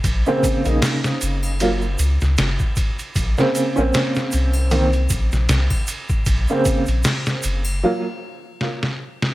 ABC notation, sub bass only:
X:1
M:4/4
L:1/16
Q:"Swing 16ths" 1/4=77
K:Bbm
V:1 name="Sub bass" clef=bass
B,,, z2 B,,, z2 G,,,4 D,, D,, G,,, z3 | B,,, z2 B,,, z2 C,,4 B,,, B,,, C,, z3 | B,,, z2 B,,, z2 G,,,2 z8 |]